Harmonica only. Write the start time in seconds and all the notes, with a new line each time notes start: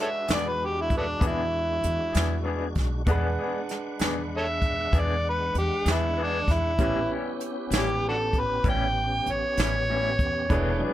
0.02 A4 C#5 E5
0.34 D5
0.48 B4
0.65 G4
0.81 E4
0.97 A3 B3 D4
1.27 E4
4.37 A4 C#5 E5
5.00 D5
5.29 B4
5.58 G4
5.92 E4
6.23 D4
6.52 E4
7.78 G4
8.09 D4 F#4 A4
8.40 B4
8.69 G5
9.31 C#5